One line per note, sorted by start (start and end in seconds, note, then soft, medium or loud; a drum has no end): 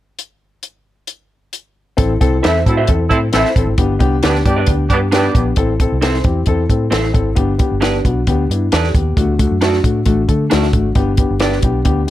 0.19 closed hi-hat medium
0.63 closed hi-hat soft
1.07 closed hi-hat medium
1.53 closed hi-hat medium
1.97 2.18 A1 medium
1.97 2.12 C4 medium
1.97 2.12 E4 medium
1.97 2.12 A4 loud
1.97 kick loud
1.97 closed hi-hat medium
2.21 2.40 C2 medium
2.21 2.35 C4 loud
2.21 2.35 E4 medium
2.21 2.35 A4 loud
2.21 kick medium
2.21 closed hi-hat medium
2.42 2.63 E2 medium
2.42 2.57 C4 medium
2.42 2.53 C4 medium
2.42 2.57 E4 medium
2.42 2.53 E4 medium
2.42 2.58 E4 medium
2.42 2.57 A4 medium
2.42 2.53 A4 medium
2.42 2.58 A4 medium
2.42 2.58 C5 medium
2.42 2.58 E5 medium
2.42 snare loud
2.42 closed hi-hat medium
2.66 2.85 A2 medium
2.66 2.76 C4 medium
2.66 2.81 C4 medium
2.66 2.75 E4 medium
2.66 2.81 E4 medium
2.66 2.81 F#4 medium
2.66 2.76 A4 medium
2.66 kick medium
2.66 closed hi-hat medium
2.77 2.89 E4 soft
2.77 2.89 A4 soft
2.77 2.89 C5 soft
2.77 2.88 E5 medium
2.87 3.08 E2 medium
2.87 3.03 C4 medium
2.87 3.03 E4 medium
2.87 3.03 A4 medium
2.87 kick medium
2.87 closed hi-hat medium
3.10 3.30 A2 medium
3.10 3.17 C4 medium
3.10 3.25 C4 medium
3.10 3.17 E4 medium
3.10 3.25 E4 medium
3.10 3.17 A4 medium
3.10 3.25 A4 medium
3.10 kick medium
3.10 closed hi-hat medium
3.32 3.43 A1 medium
3.32 3.47 C4 medium
3.32 3.65 C4 medium
3.32 3.47 E4 medium
3.32 3.65 E4 medium
3.32 3.48 E4 medium
3.32 3.65 A4 medium
3.32 3.48 A4 loud
3.32 3.48 A4 medium
3.32 3.48 C5 medium
3.32 3.49 E5 medium
3.32 snare medium
3.32 closed hi-hat medium
3.45 snare soft
3.56 3.65 A1 medium
3.56 3.71 C4 medium
3.56 3.71 E4 medium
3.56 3.71 A4 medium
3.56 kick medium
3.56 closed hi-hat medium
3.66 3.76 G#1 medium
3.78 3.97 G1 loud
3.78 3.92 B3 loud
3.78 3.93 D4 medium
3.78 3.93 G4 loud
3.78 kick loud
3.78 closed hi-hat medium
3.99 4.20 C2 medium
3.99 4.14 B3 loud
3.99 4.15 D4 loud
3.99 4.15 G4 loud
3.99 kick medium
3.99 closed hi-hat medium
4.23 4.42 D2 medium
4.23 4.37 B3 medium
4.23 4.33 B3 medium
4.23 4.37 D4 medium
4.23 4.38 D4 medium
4.23 4.33 D4 medium
4.23 4.37 G4 medium
4.23 4.38 G4 medium
4.23 4.33 G4 medium
4.23 4.38 B4 medium
4.23 4.38 D5 medium
4.23 snare loud
4.23 closed hi-hat medium
4.35 snare soft
4.45 4.64 G2 medium
4.45 4.60 B3 medium
4.45 4.55 B3 medium
4.45 4.55 D4 medium
4.45 4.60 D4 medium
4.45 4.55 G4 medium
4.45 4.60 G4 medium
4.45 kick medium
4.45 closed hi-hat medium
4.56 4.69 D4 soft
4.56 4.68 G4 soft
4.56 4.68 B4 medium
4.56 4.68 D5 soft
4.66 4.87 D2 medium
4.66 4.82 B3 medium
4.66 4.82 D4 medium
4.66 4.82 G4 medium
4.66 kick medium
4.66 closed hi-hat medium
4.89 5.28 G2 medium
4.89 4.97 B3 medium
4.89 5.05 B3 medium
4.89 4.97 D4 medium
4.89 5.05 D4 medium
4.89 4.97 G4 medium
4.89 5.05 G4 medium
4.89 kick medium
4.89 closed hi-hat medium
5.12 5.27 B3 medium
5.12 5.45 B3 medium
5.12 5.26 D4 medium
5.12 5.45 D4 medium
5.12 5.27 D4 medium
5.12 5.27 G4 medium
5.12 5.45 G4 medium
5.12 5.27 G4 loud
5.12 5.27 B4 medium
5.12 5.27 D5 medium
5.12 snare medium
5.12 closed hi-hat medium
5.35 5.54 A#1 medium
5.35 5.49 B3 medium
5.35 5.49 D4 medium
5.35 5.49 G4 medium
5.35 kick medium
5.35 closed hi-hat medium
5.56 5.86 A1 loud
5.56 5.72 C4 medium
5.56 5.72 E4 medium
5.56 5.72 A4 loud
5.56 kick loud
5.56 closed hi-hat medium
5.80 5.95 C4 medium
5.80 5.95 E4 medium
5.80 5.95 A4 medium
5.80 kick medium
5.80 closed hi-hat medium
5.92 6.20 C2 medium
6.01 6.16 C4 medium
6.01 6.17 E4 medium
6.01 6.17 A4 medium
6.01 6.17 C5 medium
6.01 snare medium
6.01 closed hi-hat medium
6.14 snare soft
6.24 6.44 E2 medium
6.24 6.39 C4 medium
6.24 6.39 E4 medium
6.24 6.39 G4 medium
6.24 kick medium
6.24 closed hi-hat medium
6.46 6.66 E2 medium
6.46 6.62 C4 medium
6.46 6.62 E4 medium
6.46 6.62 A4 loud
6.46 kick medium
6.46 closed hi-hat medium
6.70 6.89 A2 medium
6.70 6.84 C4 medium
6.70 6.84 E4 medium
6.70 6.84 A4 medium
6.70 kick medium
6.70 closed hi-hat medium
6.91 7.11 A1 medium
6.91 7.06 C4 medium
6.91 7.06 E4 medium
6.91 7.06 A4 medium
6.91 7.07 A4 medium
6.91 7.07 C5 medium
6.91 snare loud
6.91 closed hi-hat medium
7.03 snare soft
7.13 7.33 G#1 medium
7.13 7.28 C4 medium
7.13 7.29 E4 medium
7.13 7.29 A4 medium
7.13 kick medium
7.13 closed hi-hat medium
7.35 7.56 G1 loud
7.35 7.51 B3 medium
7.35 7.51 D4 medium
7.35 7.51 G4 loud
7.35 kick loud
7.35 closed hi-hat medium
7.58 7.73 B3 medium
7.58 7.74 D4 medium
7.58 7.74 G4 medium
7.58 kick medium
7.58 closed hi-hat medium
7.71 8.00 G1 medium
7.81 7.96 B3 medium
7.81 7.96 D4 medium
7.81 7.96 G4 medium
7.81 7.97 G4 medium
7.81 7.96 B4 medium
7.81 7.96 D5 medium
7.81 snare loud
7.81 closed hi-hat medium
8.05 8.24 B1 medium
8.05 8.19 B3 medium
8.05 8.19 D4 medium
8.05 8.19 F#4 medium
8.05 kick medium
8.05 closed hi-hat medium
8.27 8.46 D2 medium
8.27 8.42 B3 medium
8.27 8.42 D4 medium
8.27 8.42 G4 medium
8.27 kick medium
8.27 closed hi-hat medium
8.49 8.68 G2 medium
8.49 8.64 B3 medium
8.49 8.64 D4 medium
8.49 8.65 E4 medium
8.49 closed hi-hat medium
8.72 8.91 E2 medium
8.72 8.86 D4 medium
8.72 8.87 G4 medium
8.72 8.94 A4 medium
8.72 8.87 B4 medium
8.72 8.87 D5 medium
8.72 snare loud
8.72 closed hi-hat medium
8.84 snare soft
8.95 9.14 D#2 medium
8.95 9.38 B3 soft
8.95 9.37 G4 medium
8.95 kick medium
8.95 closed hi-hat medium
9.17 9.45 D2 medium
9.17 9.31 A3 medium
9.17 9.31 D4 medium
9.17 9.32 F#4 loud
9.17 kick loud
9.17 closed hi-hat medium
9.39 9.53 A3 medium
9.39 9.54 D4 medium
9.39 9.54 F#4 medium
9.39 kick medium
9.39 closed hi-hat medium
9.51 9.79 F#2 medium
9.61 9.76 A3 medium
9.61 9.76 D4 medium
9.61 9.76 F#4 medium
9.61 9.76 A4 medium
9.61 9.77 D5 medium
9.61 snare loud
9.61 closed hi-hat medium
9.73 snare soft
9.83 10.03 A2 medium
9.83 9.98 A3 medium
9.83 9.98 D4 medium
9.83 9.98 F#4 medium
9.83 kick medium
9.83 closed hi-hat medium
10.06 10.25 A1 medium
10.06 10.20 A3 loud
10.06 10.20 D4 medium
10.06 10.21 F#4 medium
10.06 kick medium
10.06 closed hi-hat medium
10.28 10.48 D3 medium
10.28 10.43 A3 medium
10.28 10.43 D4 medium
10.28 10.43 A4 medium
10.28 kick medium
10.28 closed hi-hat medium
10.50 10.71 D2 medium
10.50 10.65 A3 medium
10.50 10.65 D4 medium
10.50 10.65 F#4 medium
10.50 10.66 F#4 loud
10.50 10.66 A4 medium
10.50 10.66 D5 medium
10.50 snare medium
10.50 closed hi-hat medium
10.63 snare soft
10.73 10.92 G#1 medium
10.73 10.88 A3 medium
10.73 10.88 D4 medium
10.73 10.88 F#4 medium
10.73 kick medium
10.73 closed hi-hat medium
10.95 11.24 G1 loud
10.95 11.10 B3 medium
10.95 11.10 D4 medium
10.95 11.10 G4 loud
10.95 kick medium
10.95 closed hi-hat medium
11.17 11.33 B3 medium
11.17 11.33 D4 medium
11.17 11.33 G4 medium
11.17 kick medium
11.17 closed hi-hat medium
11.31 11.59 G1 medium
11.39 11.54 B3 medium
11.39 11.55 D4 medium
11.39 11.55 G4 medium
11.39 11.55 B4 medium
11.39 11.56 D5 medium
11.39 snare medium
11.39 closed hi-hat medium
11.52 snare soft
11.62 11.82 B1 medium
11.62 11.78 B3 medium
11.62 11.78 D4 medium
11.62 11.78 G4 medium
11.62 kick medium
11.62 closed hi-hat medium
11.85 12.05 D2 medium
11.85 11.99 B3 medium
11.85 12.00 D4 medium
11.85 12.00 G4 loud
11.85 kick medium
11.85 closed hi-hat medium
12.07 12.10 D4 medium